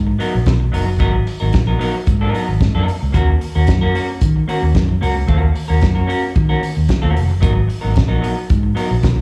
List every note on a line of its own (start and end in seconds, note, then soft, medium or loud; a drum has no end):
0.00 0.15 G#2 loud
0.07 muted clean electric guitar stroke soft
0.19 0.35 F#3 medium
0.19 0.34 B3 medium
0.19 0.33 D#4 medium
0.19 0.32 A#4 loud
0.19 open hi-hat medium
0.33 0.47 A#1 medium
0.33 muted clean electric guitar stroke soft
0.46 0.68 B1 medium
0.46 muted clean electric guitar stroke soft
0.46 kick loud
0.46 snare loud
0.46 closed hi-hat medium
0.60 muted clean electric guitar stroke medium
0.72 0.95 F#1 medium
0.72 0.89 F#3 medium
0.72 0.86 B3 medium
0.72 0.86 D#4 medium
0.72 0.85 A#4 medium
0.72 open hi-hat medium
0.86 muted clean electric guitar stroke soft
0.99 1.21 G#1 loud
0.99 1.15 F#3 medium
0.99 1.13 B3 medium
0.99 1.13 D#4 medium
0.99 1.12 A#4 loud
0.99 kick loud
0.99 closed hi-hat medium
1.13 muted clean electric guitar stroke soft
1.26 muted clean electric guitar stroke soft
1.26 open hi-hat medium
1.40 1.52 G#1 medium
1.40 1.52 F#3 soft
1.40 1.52 B3 soft
1.40 1.52 D#4 medium
1.40 1.52 A#4 medium
1.53 1.75 A#1 loud
1.53 muted clean electric guitar stroke soft
1.53 kick loud
1.53 snare loud
1.53 closed hi-hat medium
1.67 1.78 F#3 soft
1.67 1.78 B3 medium
1.67 1.79 D#4 medium
1.67 1.79 A#4 medium
1.79 1.95 F#3 medium
1.79 1.95 B3 loud
1.79 1.94 D#4 medium
1.79 1.93 A#4 loud
1.79 open hi-hat medium
1.94 muted clean electric guitar stroke soft
2.07 2.29 G#2 loud
2.07 muted clean electric guitar stroke soft
2.07 kick loud
2.07 closed hi-hat medium
2.21 2.32 F#3 medium
2.21 2.33 B3 medium
2.21 2.33 D#4 medium
2.21 2.34 A#4 medium
2.33 2.46 F#3 medium
2.33 2.46 B3 medium
2.33 2.47 D#4 medium
2.33 2.47 A#4 medium
2.33 open hi-hat medium
2.48 2.58 G#1 medium
2.48 muted clean electric guitar stroke soft
2.61 2.72 G#2 medium
2.61 muted clean electric guitar stroke soft
2.61 kick loud
2.61 snare medium
2.61 closed hi-hat medium
2.75 2.85 F#2 medium
2.75 2.86 F#3 medium
2.75 2.86 B3 medium
2.75 2.87 D#4 medium
2.75 2.87 A#4 medium
2.87 muted clean electric guitar stroke soft
2.87 open hi-hat medium
3.01 3.15 C#2 medium
3.01 muted clean electric guitar stroke soft
3.12 3.36 D#2 loud
3.12 3.29 A#3 medium
3.12 3.28 C#4 medium
3.12 3.27 F#4 medium
3.12 3.26 A#4 medium
3.12 kick loud
3.12 closed hi-hat medium
3.28 muted clean electric guitar stroke soft
3.41 muted clean electric guitar stroke soft
3.41 open hi-hat medium
3.55 3.65 D#2 loud
3.55 3.67 A#3 medium
3.55 3.67 C#4 medium
3.55 3.67 F#4 medium
3.55 3.66 A#4 medium
3.67 3.89 F#2 medium
3.67 muted clean electric guitar stroke soft
3.67 kick loud
3.67 snare loud
3.67 closed hi-hat medium
3.81 3.93 A#3 medium
3.81 3.94 C#4 medium
3.81 3.94 F#4 medium
3.81 3.95 A#4 medium
3.94 4.07 A#3 medium
3.94 4.07 C#4 medium
3.94 4.07 F#4 medium
3.94 4.08 A#4 medium
3.94 open hi-hat medium
4.09 muted clean electric guitar stroke soft
4.21 4.43 D#3 loud
4.21 kick loud
4.21 closed hi-hat medium
4.36 muted clean electric guitar stroke soft
4.48 4.64 A#3 medium
4.48 4.62 C#4 medium
4.48 4.62 F#4 loud
4.48 4.61 A#4 medium
4.48 open hi-hat medium
4.62 4.72 D#2 medium
4.62 muted clean electric guitar stroke soft
4.75 4.96 F#2 medium
4.75 muted clean electric guitar stroke soft
4.75 kick loud
4.75 snare loud
4.75 closed hi-hat medium
4.89 muted clean electric guitar stroke medium
5.01 5.23 C#2 medium
5.01 5.17 A#3 medium
5.01 5.16 C#4 medium
5.01 5.15 F#4 medium
5.01 5.14 A#4 medium
5.01 open hi-hat medium
5.15 muted clean electric guitar stroke soft
5.27 5.50 D#2 loud
5.27 5.48 A#3 medium
5.27 5.42 C#4 medium
5.27 5.41 F#4 medium
5.27 5.41 A#4 medium
5.27 kick loud
5.27 closed hi-hat medium
5.42 muted clean electric guitar stroke soft
5.55 muted clean electric guitar stroke soft
5.55 open hi-hat medium
5.68 5.80 D#2 medium
5.68 5.80 A#3 soft
5.68 5.81 C#4 medium
5.68 5.80 F#4 medium
5.68 5.80 A#4 medium
5.81 6.04 F#2 loud
5.81 muted clean electric guitar stroke soft
5.81 kick loud
5.81 snare loud
5.81 closed hi-hat medium
5.95 6.06 A#3 soft
5.95 6.07 C#4 medium
5.95 6.07 F#4 soft
5.95 6.07 A#4 medium
6.07 6.24 A#3 medium
6.07 6.22 C#4 loud
6.07 6.22 F#4 medium
6.07 6.21 A#4 medium
6.07 open hi-hat medium
6.23 muted clean electric guitar stroke soft
6.35 6.57 D#3 loud
6.35 muted clean electric guitar stroke soft
6.35 kick loud
6.35 closed hi-hat medium
6.49 6.60 A#3 medium
6.49 6.60 C#4 medium
6.49 6.61 F#4 medium
6.49 6.61 A#4 medium
6.61 muted clean electric guitar stroke soft
6.61 open hi-hat medium
6.75 6.87 D#2 medium
6.75 muted clean electric guitar stroke soft
6.88 muted clean electric guitar stroke soft
6.88 kick loud
6.88 snare loud
6.88 closed hi-hat medium
7.02 7.14 D#2 medium
7.02 7.14 A#3 medium
7.02 7.14 C#4 medium
7.02 7.15 F#4 medium
7.02 7.15 A#4 medium
7.15 7.31 F1 medium
7.15 muted clean electric guitar stroke soft
7.15 open hi-hat medium
7.29 7.40 F#1 medium
7.29 muted clean electric guitar stroke soft
7.40 7.64 G#1 loud
7.40 7.57 F#3 medium
7.40 7.55 B3 medium
7.40 7.54 D#4 medium
7.40 7.53 A#4 medium
7.40 kick loud
7.40 closed hi-hat medium
7.54 muted clean electric guitar stroke soft
7.67 muted clean electric guitar stroke soft
7.67 open hi-hat medium
7.81 7.94 G#1 loud
7.81 7.93 F#3 medium
7.81 7.93 B3 medium
7.81 7.94 D#4 medium
7.81 7.94 A#4 medium
7.94 8.18 A#1 loud
7.94 muted clean electric guitar stroke soft
7.94 kick loud
7.94 snare loud
7.94 closed hi-hat medium
8.08 8.20 F#3 medium
8.08 8.21 B3 medium
8.08 8.21 D#4 medium
8.08 8.22 A#4 medium
8.21 8.35 F#3 medium
8.21 8.35 B3 medium
8.21 8.35 D#4 medium
8.21 8.35 A#4 medium
8.21 open hi-hat medium
8.36 muted clean electric guitar stroke soft
8.50 8.71 G#2 loud
8.50 kick loud
8.50 closed hi-hat medium
8.63 muted clean electric guitar stroke soft
8.75 8.92 F#3 medium
8.75 8.89 B3 medium
8.75 8.89 D#4 medium
8.75 8.88 A#4 medium
8.75 open hi-hat medium
8.90 9.04 A#1 medium
8.90 muted clean electric guitar stroke soft
9.02 9.21 B1 loud
9.02 muted clean electric guitar stroke soft
9.02 kick loud
9.02 snare medium
9.02 closed hi-hat medium
9.16 muted clean electric guitar stroke soft